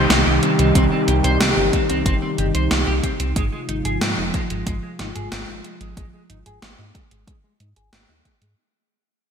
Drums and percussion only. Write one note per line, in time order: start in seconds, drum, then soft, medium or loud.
0.10 snare loud
0.10 closed hi-hat medium
0.43 closed hi-hat medium
0.59 closed hi-hat medium
0.75 kick loud
0.75 closed hi-hat medium
1.08 closed hi-hat medium
1.24 closed hi-hat medium
1.41 snare loud
1.41 closed hi-hat medium
1.73 kick loud
1.73 closed hi-hat medium
1.90 closed hi-hat medium
2.06 kick loud
2.06 closed hi-hat medium
2.38 closed hi-hat medium
2.55 closed hi-hat medium
2.71 snare loud
2.71 closed hi-hat medium
3.03 kick medium
3.03 closed hi-hat medium
3.20 closed hi-hat medium
3.36 kick loud
3.36 closed hi-hat medium
3.69 closed hi-hat medium
3.85 closed hi-hat medium
4.01 snare loud
4.01 closed hi-hat medium
4.34 kick loud
4.34 closed hi-hat medium
4.50 closed hi-hat medium
4.67 kick loud
4.67 closed hi-hat medium
4.99 snare medium
4.99 closed hi-hat medium
5.16 closed hi-hat medium
5.32 snare loud
5.32 closed hi-hat medium
5.64 closed hi-hat medium
5.81 closed hi-hat medium
5.97 kick loud
5.97 closed hi-hat medium
6.30 closed hi-hat medium
6.46 closed hi-hat medium
6.62 snare loud
6.62 closed hi-hat medium
6.95 kick loud
6.95 closed hi-hat medium
7.11 closed hi-hat medium
7.27 kick loud
7.27 closed hi-hat medium
7.60 closed hi-hat medium
7.76 closed hi-hat medium
7.93 snare loud
7.93 closed hi-hat medium
8.25 kick medium
8.25 closed hi-hat medium
8.42 closed hi-hat medium